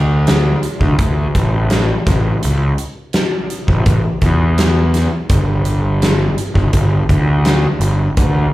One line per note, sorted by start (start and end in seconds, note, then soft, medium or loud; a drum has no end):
0.00 0.54 D2 medium
0.27 snare loud
0.27 closed hi-hat medium
0.63 closed hi-hat medium
0.81 0.95 D2 medium
0.81 kick medium
0.98 1.27 D2 medium
0.98 kick loud
0.98 closed hi-hat medium
1.35 1.91 A1 medium
1.35 kick medium
1.35 closed hi-hat medium
1.70 snare loud
1.70 closed hi-hat medium
2.07 2.35 A1 medium
2.07 kick medium
2.07 snare soft
2.07 closed hi-hat medium
2.43 2.72 C#2 medium
2.43 closed hi-hat medium
2.78 closed hi-hat soft
3.13 snare medium
3.13 closed hi-hat medium
3.50 closed hi-hat soft
3.68 3.82 A1 medium
3.68 kick medium
3.86 4.00 A1 medium
3.86 kick medium
3.86 closed hi-hat medium
4.21 5.06 E2 medium
4.21 kick medium
4.21 closed hi-hat soft
4.58 snare loud
4.58 closed hi-hat medium
4.94 snare soft
4.94 closed hi-hat medium
5.29 6.28 G1 medium
5.29 kick loud
5.29 closed hi-hat medium
5.65 closed hi-hat medium
6.02 snare medium
6.02 closed hi-hat medium
6.38 closed hi-hat medium
6.55 6.69 G1 medium
6.55 kick medium
6.73 7.02 G1 medium
6.73 kick medium
6.73 closed hi-hat medium
7.09 7.65 D2 medium
7.09 kick medium
7.09 closed hi-hat medium
7.45 snare medium
7.45 closed hi-hat medium
7.80 8.08 G1 medium
7.80 closed hi-hat medium
8.17 8.45 D2 medium
8.17 kick loud
8.17 closed hi-hat medium